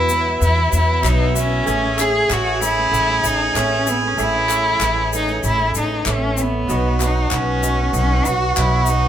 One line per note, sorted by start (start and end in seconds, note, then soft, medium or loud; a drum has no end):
0.00 0.10 E2 medium
0.00 0.38 E2 loud
0.00 1.63 E2 medium
0.00 0.10 B2 medium
0.00 0.08 F#3 loud
0.00 0.09 B3 medium
0.00 0.10 B3 medium
0.00 0.09 E4 medium
0.00 0.11 E4 loud
0.00 0.39 E4 loud
0.00 1.65 E4 medium
0.00 0.11 F#4 loud
0.00 0.10 B4 medium
0.00 0.10 E5 loud
0.08 0.26 E3 medium
0.08 0.34 F#3 medium
0.08 0.34 B3 medium
0.08 0.27 B3 medium
0.08 0.34 E4 medium
0.08 0.27 E4 medium
0.08 0.35 B4 medium
0.08 0.35 E5 medium
0.08 shaker loud
0.13 0.26 F#4 medium
0.27 0.59 E3 soft
0.27 0.58 B3 medium
0.27 0.57 E4 medium
0.27 0.56 F#4 medium
0.39 0.71 E2 loud
0.39 0.65 F#3 medium
0.39 0.65 B3 medium
0.39 0.65 E4 medium
0.39 0.65 B4 medium
0.39 0.65 E5 medium
0.39 shaker medium
0.43 0.72 E4 loud
0.58 0.72 E3 medium
0.58 0.73 B3 medium
0.58 0.74 E4 medium
0.58 0.73 F#4 medium
0.70 1.02 E2 medium
0.70 1.03 E3 medium
0.70 0.96 F#3 medium
0.70 0.96 B3 medium
0.70 0.96 E4 medium
0.70 0.96 B4 medium
0.70 0.97 E5 medium
0.70 shaker loud
0.74 1.03 B3 medium
0.74 1.05 E4 medium
0.74 1.09 E4 loud
0.74 1.04 F#4 medium
1.01 1.63 B1 loud
1.01 1.35 E2 medium
1.01 1.35 B2 medium
1.01 1.34 E3 medium
1.01 1.27 F#3 loud
1.01 1.28 B3 loud
1.01 1.35 B3 medium
1.01 1.28 E4 medium
1.01 1.28 B4 loud
1.01 1.28 E5 loud
1.01 clap loud
1.05 1.37 D#4 loud
1.05 1.36 F#4 medium
1.05 shaker medium
1.35 1.51 E3 medium
1.35 1.60 F#3 medium
1.35 1.60 B3 medium
1.35 1.51 B3 medium
1.35 2.02 C#4 loud
1.35 1.60 E4 medium
1.35 1.50 E4 medium
1.35 1.49 F#4 medium
1.35 1.60 B4 medium
1.35 1.60 E5 medium
1.35 shaker loud
1.50 1.66 E3 soft
1.50 1.67 B3 medium
1.50 1.67 E4 medium
1.50 1.66 F#4 medium
1.66 4.13 A1 medium
1.66 2.26 A1 loud
1.66 4.13 A2 medium
1.66 1.83 A2 medium
1.66 1.83 E3 loud
1.66 1.91 A3 loud
1.66 1.83 A3 loud
1.66 1.91 C#4 medium
1.66 1.82 C#4 loud
1.66 1.91 E4 medium
1.66 1.81 E4 medium
1.66 6.33 G#4 loud
1.66 1.91 C#5 loud
1.66 1.91 E5 loud
1.66 shaker medium
1.82 2.29 A3 soft
1.82 2.29 C#4 medium
1.82 2.29 E4 medium
1.97 2.22 A3 loud
1.97 2.22 C#4 medium
1.97 2.22 E4 medium
1.97 2.34 G#4 loud
1.97 2.22 C#5 loud
1.97 2.22 E5 loud
1.97 clap medium
1.97 shaker loud
2.27 2.89 A1 loud
2.27 2.61 A2 medium
2.27 2.59 E3 medium
2.27 2.53 A3 medium
2.27 2.60 A3 medium
2.27 2.53 C#4 medium
2.27 2.60 C#4 medium
2.27 2.53 E4 medium
2.27 2.61 E4 loud
2.27 2.54 C#5 medium
2.27 2.54 E5 medium
2.27 clap loud
2.31 2.62 F#4 loud
2.31 shaker medium
2.60 2.76 E3 medium
2.60 2.85 A3 medium
2.60 2.77 A3 medium
2.60 2.85 C#4 medium
2.60 2.76 C#4 medium
2.60 2.85 E4 medium
2.60 2.75 E4 medium
2.60 2.85 C#5 medium
2.60 2.85 E5 medium
2.60 shaker loud
2.64 3.28 E4 loud
2.76 3.08 A3 medium
2.76 3.08 C#4 medium
2.76 3.07 E4 medium
2.91 3.21 A1 loud
2.91 3.16 A3 medium
2.91 3.16 C#4 medium
2.91 3.17 E4 medium
2.91 3.16 C#5 medium
2.91 3.17 F#5 medium
2.91 shaker medium
3.09 3.23 A3 soft
3.09 3.24 C#4 medium
3.22 3.53 A1 medium
3.22 3.53 E3 medium
3.22 3.48 A3 medium
3.22 3.54 A3 medium
3.22 3.48 C#4 medium
3.22 3.48 E4 medium
3.22 3.48 C#5 medium
3.22 3.48 E5 medium
3.22 shaker loud
3.27 3.59 D#4 loud
3.54 4.14 A1 loud
3.54 3.86 A2 medium
3.54 3.85 E3 medium
3.54 3.79 A3 loud
3.54 3.86 A3 medium
3.54 3.80 C#4 medium
3.54 3.86 C#4 loud
3.54 3.79 E4 medium
3.54 3.87 E4 medium
3.54 3.80 C#5 medium
3.54 3.80 E5 loud
3.54 clap medium
3.54 shaker medium
3.58 3.92 C#4 loud
3.86 4.02 E3 medium
3.86 4.11 A3 medium
3.86 4.02 A3 medium
3.86 4.11 C#4 medium
3.86 4.01 C#4 medium
3.86 4.11 E4 medium
3.86 4.01 E4 medium
3.86 4.11 C#5 medium
3.86 4.11 E5 medium
3.86 shaker loud
3.91 4.08 B3 loud
4.02 4.18 A3 soft
4.02 4.18 C#4 medium
4.02 4.18 E4 medium
4.07 4.25 C#4 loud
4.17 4.77 A1 loud
4.17 6.65 A1 medium
4.17 4.34 A2 medium
4.17 6.65 A2 medium
4.17 4.34 E3 medium
4.17 4.42 A3 loud
4.17 4.34 A3 medium
4.17 4.42 C#4 medium
4.17 4.33 C#4 loud
4.17 4.43 E4 loud
4.17 4.33 E4 medium
4.17 4.43 C#5 medium
4.17 4.43 E5 loud
4.17 shaker medium
4.23 5.15 E4 loud
4.34 4.80 A3 soft
4.34 4.81 C#4 medium
4.34 4.81 E4 medium
4.49 4.73 A3 loud
4.49 4.73 C#4 medium
4.49 4.74 E4 medium
4.49 4.74 C#5 medium
4.49 4.74 E5 loud
4.49 clap medium
4.49 shaker loud
4.80 5.39 A1 loud
4.80 5.12 A2 medium
4.80 5.12 E3 medium
4.80 5.05 A3 medium
4.80 5.12 A3 medium
4.80 5.05 C#4 medium
4.80 5.13 C#4 loud
4.80 5.05 E4 medium
4.80 5.13 E4 medium
4.80 5.05 C#5 medium
4.80 5.05 E5 medium
4.80 clap loud
4.80 shaker medium
5.13 5.28 E3 medium
5.13 5.37 A3 medium
5.13 5.28 A3 medium
5.13 5.37 C#4 medium
5.13 5.29 C#4 medium
5.13 5.43 D#4 loud
5.13 5.37 E4 medium
5.13 5.27 E4 medium
5.13 5.37 C#5 medium
5.13 5.37 E5 medium
5.13 shaker loud
5.28 5.60 A3 soft
5.28 5.59 C#4 medium
5.28 5.58 E4 medium
5.28 shaker soft
5.43 5.73 A1 loud
5.43 5.68 A3 medium
5.43 5.69 C#4 medium
5.43 5.68 E4 medium
5.43 5.74 E4 loud
5.43 5.69 C#5 medium
5.43 5.69 E5 medium
5.43 shaker medium
5.60 5.75 A3 medium
5.60 5.75 C#4 medium
5.60 5.75 E4 medium
5.75 6.05 A1 medium
5.75 6.06 E3 medium
5.75 6.00 A3 medium
5.75 6.06 A3 medium
5.75 5.99 C#4 medium
5.75 6.07 C#4 medium
5.75 6.13 D#4 medium
5.75 5.99 E4 medium
5.75 6.00 C#5 medium
5.75 6.00 E5 medium
5.75 shaker loud
6.06 6.65 A1 loud
6.06 6.38 A2 medium
6.06 6.35 E3 medium
6.06 6.31 A3 loud
6.06 6.36 A3 medium
6.06 6.31 C#4 medium
6.06 6.37 C#4 medium
6.06 6.31 E4 medium
6.06 6.37 E4 medium
6.06 6.31 C#5 medium
6.06 6.31 E5 loud
6.06 clap loud
6.06 shaker medium
6.11 6.43 C#4 medium
6.36 6.52 E3 medium
6.36 6.62 A3 medium
6.36 6.53 A3 medium
6.36 6.62 C#4 medium
6.36 6.52 C#4 medium
6.36 6.62 E4 medium
6.36 6.51 E4 medium
6.36 6.62 C#5 medium
6.36 6.62 E5 medium
6.36 shaker loud
6.42 7.08 B3 loud
6.52 6.68 A3 soft
6.52 6.68 C#4 medium
6.52 6.68 E4 medium
6.67 7.28 B1 loud
6.67 9.08 B1 medium
6.67 6.84 B2 medium
6.67 9.08 B2 medium
6.67 6.84 F#3 medium
6.67 6.93 F#3 loud
6.67 6.84 B3 medium
6.67 6.94 B3 medium
6.67 6.83 D#4 medium
6.67 6.94 D#4 medium
6.67 9.08 F#4 loud
6.67 6.83 F#4 medium
6.67 6.94 B4 medium
6.67 6.94 D#5 loud
6.67 shaker medium
6.84 7.31 B3 soft
6.84 7.31 D#4 soft
6.84 7.31 F#4 medium
7.00 7.25 F#3 loud
7.00 7.25 B3 medium
7.00 7.25 D#4 medium
7.00 7.25 B4 loud
7.00 7.25 D#5 loud
7.00 clap medium
7.00 shaker loud
7.06 7.37 D#4 loud
7.30 7.90 B1 loud
7.30 7.63 B2 medium
7.30 7.55 F#3 medium
7.30 7.62 F#3 medium
7.30 7.56 B3 medium
7.30 7.63 B3 medium
7.30 7.56 D#4 medium
7.30 7.63 D#4 medium
7.30 7.64 F#4 loud
7.30 7.56 B4 medium
7.30 7.56 D#5 medium
7.30 clap medium
7.30 shaker medium
7.35 7.96 C#4 loud
7.62 7.87 F#3 medium
7.62 7.79 F#3 medium
7.62 7.87 B3 medium
7.62 7.79 B3 medium
7.62 7.87 D#4 medium
7.62 7.79 D#4 medium
7.62 7.78 F#4 medium
7.62 7.88 B4 medium
7.62 7.88 D#5 medium
7.62 shaker loud
7.79 8.11 B3 soft
7.79 8.10 D#4 soft
7.79 8.09 F#4 medium
7.92 8.23 B1 loud
7.92 8.18 F#3 medium
7.92 8.18 B3 medium
7.92 8.18 D#4 medium
7.92 8.18 B4 medium
7.92 8.18 D#5 medium
7.92 shaker medium
7.97 8.29 C#4 loud
8.10 8.26 B3 soft
8.10 8.26 D#4 medium
8.10 8.26 F#4 medium
8.25 8.55 B1 loud
8.25 8.56 F#3 medium
8.25 8.51 F#3 medium
8.25 8.50 B3 medium
8.25 8.57 B3 medium
8.25 8.51 D#4 medium
8.25 8.58 D#4 medium
8.25 8.58 F#4 loud
8.25 8.57 F#4 medium
8.25 8.51 B4 medium
8.25 8.51 D#5 medium
8.25 shaker medium
8.56 9.08 B1 loud
8.56 8.88 B2 medium
8.56 8.88 F#3 medium
8.56 8.82 F#3 loud
8.56 8.89 B3 medium
8.56 8.82 B3 medium
8.56 8.82 D#4 medium
8.56 8.92 E4 loud
8.56 8.89 F#4 medium
8.56 8.82 B4 medium
8.56 8.82 D#5 loud
8.56 clap medium
8.56 shaker medium
8.86 9.08 F#3 medium
8.86 9.04 F#3 medium
8.86 9.08 B3 medium
8.86 9.05 B3 medium
8.86 9.08 D#4 medium
8.86 9.08 B4 medium
8.86 9.08 D#5 medium
8.86 shaker loud
8.90 9.04 D#4 medium
8.90 9.08 D#4 loud
8.90 9.03 F#4 medium
9.04 9.08 F#4 medium